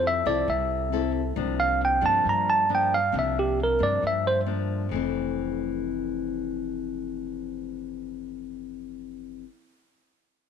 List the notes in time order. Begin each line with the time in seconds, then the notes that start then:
Already playing: F2 F3 C4 E4 A4
0.07 E5
0.25 C2 C4 E4 A4 D5
0.47 C2 C3 E5
0.92 C4 E4 A4
1.36 C2 C3 F3 A#3 D4
1.60 F5
1.85 G5
2.01 G2 F3 A#3 D4
2.06 A5
2.23 G2
2.29 A#5
2.50 A5
2.69 F3 A#3 D4
2.75 G5
2.94 F5
3.12 C2 C3 F3 A#3 D4
3.19 E5
3.39 G4
3.63 A#4
3.79 G2 F3 A#3 D4
3.83 D5
4.01 G2
4.07 E5
4.27 C5
4.46 F3 A#3 D4
4.89 F1 F2 E3 A3
4.95 C4